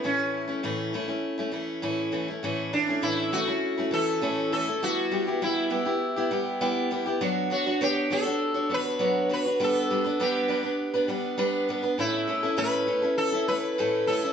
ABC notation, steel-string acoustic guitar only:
X:1
M:4/4
L:1/16
Q:1/4=100
K:Amix
V:1 name="Steel-string acoustic guitar"
[A,,E,A,CE]3 [A,CE] [A,,E,A,CE]2 [E,A,CE] [A,CE]2 [A,CE] [E,A,CE]2 [A,,E,A,CE]2 [E,A,CE] [A,CE] | [A,,E,A,CE]2 [E,A,CE] [A,CE] [A,,E,A,CE]2 [E,A,CE] [A,CE]2 [A,CE] [E,A,CE]2 [A,,E,A,CE]2 [E,A,CE] [A,CE] | [G,B,E]2 [G,B,EG] [B,EG] [G,B,EG]2 [G,B,EG] [B,EG]2 [B,EG] [G,B,EG]2 [G,B,EG]2 [G,B,EG] [B,EG] | [F,B,DFc]2 [B,DFc] [DFc] [B,Dc]2 [B,DFc] [DFc]2 [DFc] [B,DFc]2 [F,B,DFc]2 [B,DFc] [DFc] |
[G,B,DB]2 [G,B,DB] [B,DB] [G,B,DB]2 [G,B,DB] [B,DB]2 [B,DB] [G,B,DB]2 [G,B,DB]2 [G,B,DB] [B,DB] | [A,,A,CEA]2 [A,CEA] [CEA] [A,,A,CEA]2 [A,CEA] [CEA]2 [CEA] [A,CEA]2 [A,,A,CEA]2 [A,CEA] [CEA] |]